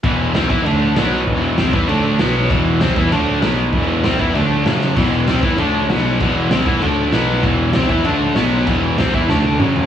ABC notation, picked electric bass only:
X:1
M:4/4
L:1/8
Q:1/4=194
K:Em
V:1 name="Picked electric bass" clef=bass
E,,,2 C,, E,, D,,2 B,,,2 | E,,,2 C,, E,, D,,2 B,,,2 | E,,,2 C,, E,, D,,2 B,,,2 | E,,,2 C,, E,, D,,2 F,,,2 |
E,,,2 C,, E,, D,,2 B,,,2 | E,,,2 C,, E,, D,,2 B,,,2 | E,,,2 C,, E,, D,,2 B,,,2 | E,,,2 C,, E,, D,,2 F,,,2 |]